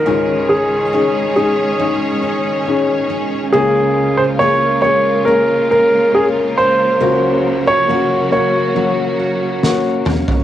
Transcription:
<<
  \new Staff \with { instrumentName = "Grand piano" } { \time 4/4 \key des \major \tempo 4 = 69 bes'8 aes'4 aes'4. r4 | aes'8. c''16 des''8 des''8 bes'8 bes'8 aes'8 c''8~ | c''8. des''8. des''2 r8 | }
  \new Staff \with { instrumentName = "Steel-string acoustic guitar" } { \time 4/4 \key des \major <des aes'>4 <des' ees' aes'>8 des'8 aes8 ees'4 des'8 | <des bes'>4 <des' f' bes'>8 des'8 aes8 f'4 des'8 | <des bes'>4 <des' ges' bes'>8 des'8 ges8 ges'4 des'8 | }
  \new Staff \with { instrumentName = "Upright piano" } { \time 4/4 \key des \major <des' ees' aes'>4 <des' ees' aes'>8 <des' ees' aes'>8 <des' ees' aes'>4 <des' ees' aes'>4 | <bes des' aes'>4 <bes des' aes'>8 <bes des' aes'>8 <bes des' aes'>4 <bes des' bes'>4 | <bes des' ges'>4 <bes des' ges'>8 <bes des' ges'>8 <bes des' ges'>4 <bes des' ges'>4 | }
  \new Staff \with { instrumentName = "Upright piano" } { \clef bass \time 4/4 \key des \major <des, aes,>1 | <des, des>1 | <des, des>1 | }
  \new Staff \with { instrumentName = "String section" } { \time 4/4 \key des \major << { <ees des' des''>1 | <des bes bes'>1~ | <des bes bes'>1 | } \\ { <aes aes'>1 | <aes f'>1 | <ges ges'>1 | } >> }
  \new DrumStaff \with { instrumentName = "Drums" } \drummode { \time 4/4 r4 r4 r4 r4 | r4 r4 r4 r4 | r4 r4 r4 sn8 toml16 tomfh16 | }
>>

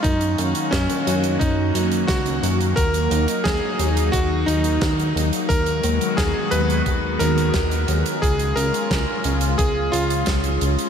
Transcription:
<<
  \new Staff \with { instrumentName = "Electric grand piano" } { \time 4/4 \key ees \minor \tempo 4 = 88 ees'4 des'4 ees'4 ges'8. r16 | bes'4 aes'4 ges'8 ees'4 r8 | bes'4 aes'8 ces''4 bes'4. | aes'8 bes'4. aes'8 f'4 r8 | }
  \new Staff \with { instrumentName = "Analog synth pad" } { \time 4/4 \key ees \minor << { <ees ges des' ges'>1 | ees'1 | <ees ges ces' ges'>1 | <des' f'>1 | } \\ { bes1 | ges1 | aes1~ | aes1 | } >> }
  \new Staff \with { instrumentName = "Analog synth bass" } { \clef bass \time 4/4 \key ees \minor ges,8 ges,8 ges,8 ges,8 ges,8 ges,8 des,8 ges,8 | ees,8 ees,8 ees,8 ees,8 ees,8 ees,8 ees,8 ees,8 | ees,8 ees,8 ees,8 ees,8 ees,8 ees,8 ees,8 ees,8 | des,8 des,8 des,8 des,8 des,8 des,8 des,8 des,8 | }
  \new DrumStaff \with { instrumentName = "Drums" } \drummode { \time 4/4 <hh bd>16 hh16 hh16 hh16 <hh bd sn>16 hh16 hh16 hh16 <hh bd>8 hh16 hh16 <hh bd sn>16 hh16 hh16 hh16 | <hh bd>16 hh16 hh16 hh16 <hh bd sn>8 hh16 hh16 <hh bd>8 hh16 hh16 <hh bd sn>16 hh16 hh16 hh16 | <hh bd>16 hh16 hh16 hh16 <hh bd sn>8 hh16 hh16 <hh bd>8 hh16 hh16 <hh bd sn>16 hh16 hh16 hh16 | <hh bd>16 hh16 hh16 hh16 <hh bd sn>8 hh16 hh16 <hh bd>8 hh16 hh16 <hh bd sn>16 hh16 hh16 hh16 | }
>>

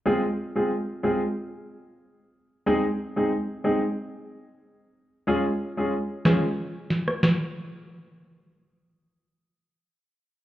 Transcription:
<<
  \new Staff \with { instrumentName = "Grand piano" } { \time 4/4 \key f \minor \tempo 4 = 92 <aes c' f' aes'>16 r8 <aes c' f' aes'>16 r8 <aes c' f' aes'>16 r2 r16 | <aes c' ees' aes'>16 r8 <aes c' ees' aes'>16 r8 <aes c' ees' aes'>16 r2 r16 | <aes des' f' aes'>16 r8 <aes des' f' aes'>16 r8 <aes des' f' aes'>16 r2 r16 | r1 | }
  \new DrumStaff \with { instrumentName = "Drums" } \drummode { \time 4/4 r4 r4 r4 r4 | r4 r4 r4 r4 | r4 r8 <ss sn>8 r8 sn16 ss16 <ss sn>4 | r4 r4 r4 r4 | }
>>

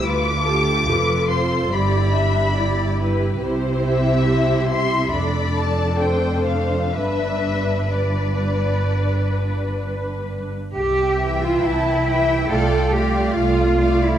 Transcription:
<<
  \new Staff \with { instrumentName = "Violin section" } { \time 4/4 \key c \major \tempo 4 = 70 d'''4. c'''8 b''2 | r8 e''4 c'''8 b''8 a''8 g''8 f''8 | e''4 d''2 r4 | e''4 a''8 g''4. f''4 | }
  \new Staff \with { instrumentName = "Violin section" } { \time 4/4 \key c \major b'8 a'8 b'8 c''8 d''8 e''8 d''8 b'8 | c''4 c''8 e''8 d''4 c''4 | b'2.~ b'8 r8 | r8 <e'' g''>4 <e'' g''>8 <d'' f''>8 <d'' f''>4 <d'' f''>8 | }
  \new Staff \with { instrumentName = "Viola section" } { \time 4/4 \key c \major << { f'4 a'4 g'4 g'4 | g'2 a'2 | b'4 b'2~ b'8. r16 | r8 e'4 e'8 f'8 f'4 f'8 | } \\ { f'8 g'8 f'4 e'8 d'8 e'4 | e'2 d'2 | d'4 d'2~ d'8. r16 | r8 e4 e8 a8 a4 a8 | } >> }
  \new Staff \with { instrumentName = "Cello section" } { \time 4/4 \key c \major d,4 f,4 g,2 | c2 f,2 | g,2.~ g,8. r16 | g'8. f'16 e'4 a'8 g'8 f'8. e'16 | }
  \new Staff \with { instrumentName = "Double bass section" } { \clef bass \time 4/4 \key c \major d,4 f,,4 g,,2 | c,2 f,,2 | g,,2.~ g,,8. r16 | c,4 c,4 c,4 c,4 | }
>>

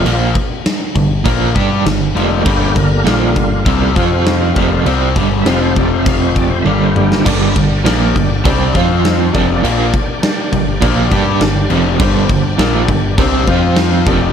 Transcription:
<<
  \new Staff \with { instrumentName = "Honky-tonk piano" } { \time 4/4 \key g \minor \tempo 4 = 100 r1 | r1 | r1 | <d' g' bes' d''>4 <d' g' bes' d''>4 <d' g' bes' d''>8 <c' f' c'' f''>4 <d' g' bes' d''>8~ |
<d' g' bes' d''>8 r8 <d' g' bes' d''>4 <d' g' bes' d''>4 <d' g' bes' d''>4 | <d' g' bes' c''>4 <d' g' bes' d''>4 <d' g' bes' c''>8 <c' f' c'' f''>4 <d' g' bes' d''>8 | }
  \new Staff \with { instrumentName = "Tonewheel organ" } { \time 4/4 \key g \minor f'8 r2. r8 | g'8 bes'8 f'4. f'4.~ | f'8 r8 <e'' f''>16 c''16 d''16 c''16 <e'' f''>16 c''16 d''16 c''16 <e'' f''>16 c''16 <bes g'>8 | <bes d' g' d''>2~ <bes d' g' d''>8 <c' f' c''>4 <bes d' g' d''>8~ |
<bes d' g' d''>2.~ \tuplet 3/2 { <bes d' g' d''>8. <b ees' aes' ees''>8 <bes d' g' d''>16~ } | <bes d' g' d''>2~ <bes d' g' d''>8 <c' f' c''>4 <bes d' g' d''>8 | }
  \new Staff \with { instrumentName = "Tonewheel organ" } { \clef bass \time 4/4 \key g \minor <d g bes>8 r2. <d g bes>8~ | <d g bes>2 <d g bes>8 <c f c'>4 <d g bes>8 | r4 <c f c'>8 r4. <d g bes>8 r8 | r1 |
r1 | r1 | }
  \new Staff \with { instrumentName = "Overdriven electric guitar" } { \clef bass \time 4/4 \key g \minor <bes, f bes>8 r4 <g, d>8 <bes, f bes>8 <g d' g'>8 <g, d>8 <f, c f>8 | <g, d g>8 <g, d>8 <bes, f bes>8 <g, d>8 <c g c'>8 <f c' f'>4 <f, c f>8 | <c g c'>8 <g, d g>8 <f, c f>2 <g, d g>4 | <g, d g>8 <g, d>8 <bes, f bes>8 <g, d>8 <c g c'>8 <f c' f'>4 <f, c f>8 |
<bes, f bes>8 r4 <g, d>8 <bes, f bes>8 <g d' g'>8 <g, d>8 <f, c f>8 | <g, d g>8 <g, d>8 <bes, f bes>8 <g, d>8 <c g c'>8 <f c' f'>4 <f, c f>8 | }
  \new Staff \with { instrumentName = "Overdriven electric guitar" } { \clef bass \time 4/4 \key g \minor <bes, f bes>8 r4 <g, d>8 <bes, f bes>8 <g d' g'>8 <g, d>8 <f, c f>8 | <g, d g>8 <g, d>8 <bes, f bes>8 <g, d>8 <c g c'>8 <f c' f'>4 <f, c f>8 | <c g c'>8 <g, d g>8 <f, c f>2 <g, d g>4 | <g, d g>8 <g, d>8 <bes, f bes>8 <g, d>8 <c g c'>8 <f c' f'>4 <f, c f>8 |
<bes, f bes>8 r4 <g, d>8 <bes, f bes>8 <g d' g'>8 <g, d>8 <f, c f>8 | <g, d g>8 <g, d>8 <bes, f bes>8 <g, d>8 <c g c'>8 <f c' f'>4 <f, c f>8 | }
  \new Staff \with { instrumentName = "Picked electric bass" } { \clef bass \time 4/4 \key g \minor bes,,8 r4 g,,8 bes,,8 g,8 g,,8 f,,8 | g,,8 g,,8 bes,,8 g,,8 c,8 f,4 f,,8 | c,8 g,,8 f,,2 g,,4 | g,,8 g,,8 bes,,8 g,,8 c,8 f,4 f,,8 |
bes,,8 r4 g,,8 bes,,8 g,8 g,,8 f,,8 | g,,8 g,,8 bes,,8 g,,8 c,8 f,4 f,,8 | }
  \new DrumStaff \with { instrumentName = "Drums" } \drummode { \time 4/4 cymc8 <cymc bd>8 <cymc sn>8 <cymc bd>8 <cymc bd>8 <cymc bd>8 <cymc sn>8 cymc8 | <cymc bd>8 <cymc bd>8 <cymc sn>8 <cymc bd>8 <cymc bd>8 <cymc bd>8 <cymc sn>8 <cymc bd>8 | cymc8 <cymc bd>8 <cymc sn>8 <cymc bd>8 <cymc bd>8 <cymc bd>8 tommh8 toml16 sn16 | <cymc bd>8 <cymc bd>8 <cymc sn>8 <cymc bd>8 <cymc bd>8 <cymc bd>8 <cymc sn>8 <cymc bd>8 |
cymc8 <cymc bd>8 <cymc sn>8 <cymc bd>8 <cymc bd>8 <cymc bd>8 <cymc sn>8 cymc8 | <cymc bd>8 <cymc bd>8 <cymc sn>8 <cymc bd>8 <cymc bd>8 <cymc bd>8 <cymc sn>8 <cymc bd>8 | }
>>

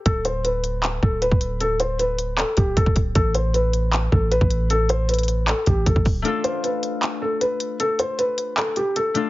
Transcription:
<<
  \new Staff \with { instrumentName = "Felt piano" } { \time 4/4 \key a \minor \tempo 4 = 155 a'8 c''8 b'4. a'8 b'4 | a'8 c''8 b'4 a'8 g'8 a'8 r8 | a'8 c''8 b'4. a'8 b'4 | a'8 c''8 b'4 a'8 g'8 a'8 r8 |
a'8 c''8 b'4. a'8 b'4 | a'8 c''8 b'4 a'8 g'8 a'8 r8 | }
  \new Staff \with { instrumentName = "Harp" } { \time 4/4 \key a \minor r1 | r1 | r1 | r1 |
<a d' f' a'>1~ | <a d' f' a'>2.~ <a d' f' a'>8 <a d' f' a'>8 | }
  \new Staff \with { instrumentName = "808-style bass" } { \clef bass \time 4/4 \key a \minor d,,2~ d,,8 d,,8. d,,8.~ | d,,2~ d,,16 r16 d,,8 d,,16 d,,16 d,,8 | a,,2~ a,,8 a,,8. a,,8.~ | a,,2~ a,,16 r16 a,,8 a,,16 a,,16 d,,8 |
r1 | r1 | }
  \new DrumStaff \with { instrumentName = "Drums" } \drummode { \time 4/4 <hh bd>8 hh8 hh8 hh8 <hc hh>8 bd8 hh16 bd16 hh8 | hh8 hh8 hh8 hh8 <hc hh>8 <hh bd>8 <hh bd>16 bd16 <hh bd>8 | <hh bd>8 hh8 hh8 hh8 <hc hh>8 bd8 hh16 bd16 hh8 | hh8 hh8 hh32 hh32 hh32 hh32 hh8 <hc hh>8 <hh bd>8 <hh bd>16 bd16 <hho bd>8 |
hh8 hh8 hh8 hh8 <hc hh>4 hh8 hh8 | hh8 hh8 hh8 hh8 <hc hh>8 hh8 hh8 hh8 | }
>>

